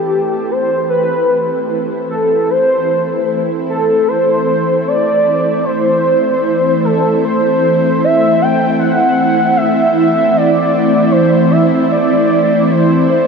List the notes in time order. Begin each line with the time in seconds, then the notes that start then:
Already playing: E3 A3 C4 E4 G4 A4
0.51 C5
0.90 B4
2.10 A4
2.50 C5
3.69 A4
4.08 C5
4.88 D5
5.65 C5
6.85 A4
7.25 C5
8.04 E5
8.42 G5
8.79 F#5
9.57 E5
9.97 E5
10.37 D5
11.12 C5
11.51 E5
11.92 D5
12.71 C5
13.09 C5